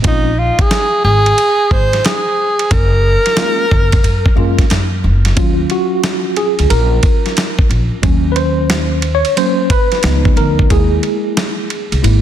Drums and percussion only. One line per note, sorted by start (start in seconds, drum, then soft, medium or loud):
0.04 kick loud
0.04 ride medium
0.59 kick medium
0.59 ride medium
0.71 snare loud
0.71 hi-hat pedal medium
0.71 ride medium
1.26 ride medium
1.38 ride medium
1.71 kick medium
1.93 snare soft
1.93 ride medium
2.05 snare loud
2.05 hi-hat pedal medium
2.05 ride medium
2.59 ride medium
2.71 kick loud
2.71 ride medium
3.26 snare soft
3.26 ride medium
3.37 snare loud
3.37 hi-hat pedal medium
3.37 ride medium
3.71 kick medium
3.92 kick loud
3.92 ride medium
4.04 ride medium
4.26 kick medium
4.59 kick medium
4.59 snare soft
4.59 ride medium
4.70 snare medium
4.70 hi-hat pedal medium
4.70 ride medium
5.25 snare soft
5.25 ride medium
5.37 kick loud
5.37 ride medium
5.70 ride soft
6.04 snare loud
6.04 hi-hat pedal medium
6.04 ride medium
6.36 ride medium
6.59 ride soft
6.70 ride medium
7.03 kick medium
7.03 ride medium
7.26 snare soft
7.26 ride soft
7.37 snare loud
7.37 hi-hat pedal medium
7.37 ride medium
7.59 kick loud
7.71 ride medium
8.03 kick loud
8.03 ride medium
8.36 ride medium
8.70 snare loud
8.70 hi-hat pedal medium
8.70 ride medium
9.02 ride medium
9.25 ride soft
9.37 ride medium
9.70 kick medium
9.70 ride medium
9.92 snare soft
9.92 ride soft
10.03 snare loud
10.03 hi-hat pedal medium
10.03 ride medium
10.25 kick loud
10.37 ride soft
10.59 kick medium
10.70 kick loud
10.70 ride medium
11.03 ride soft
11.37 snare loud
11.37 hi-hat pedal medium
11.37 ride medium
11.70 ride medium
11.92 ride soft
12.04 ride medium